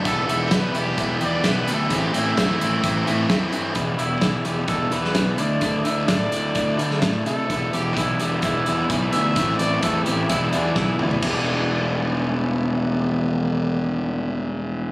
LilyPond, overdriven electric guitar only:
\new Staff \with { instrumentName = "Overdriven electric guitar" } { \clef bass \time 4/4 \key e \minor \tempo 4 = 129 <e, b, e g b e'>8 <e, b, e g b e'>8 <e, b, e g b e'>8 <e, b, e g b e'>8 <e, b, e g b e'>8 <e, b, e g b e'>8 <e, b, e g b e'>8 <e, b, e g b e'>8 | <a, e a c' e'>8 <a, e a c' e'>8 <a, e a c' e'>8 <a, e a c' e'>8 <a, e a c' e'>8 <a, e a c' e'>8 <a, e a c' e'>8 <a, e a c' e'>8 | <e, b, e g b e'>8 <e, b, e g b e'>8 <e, b, e g b e'>8 <e, b, e g b e'>8 <e, b, e g b e'>8 <e, b, e g b e'>8 <e, b, e g b e'>8 <d a d' e'>8 | <d a d' e'>8 <d a d' e'>8 <d a d' e'>8 <d a d' e'>8 <d a d' e'>8 <d a d' e'>8 <d a d' e'>8 <d a d' e'>8 |
<e, b, e g b e'>8 <e, b, e g b e'>8 <e, b, e g b e'>8 <e, b, e g b e'>8 <e, b, e g b e'>8 <e, b, e g b e'>8 <e, b, e g b e'>8 <e, b, e g b e'>8 | <a, e a c' e'>8 <a, e a c' e'>8 <a, e a c' e'>8 <a, e a c' e'>8 <e, b, e g b e'>8 <e, b, e g b e'>8 <e, b, e g b e'>8 <e, b, e g b e'>8 | <e, b, e g b g'>1~ | <e, b, e g b g'>1 | }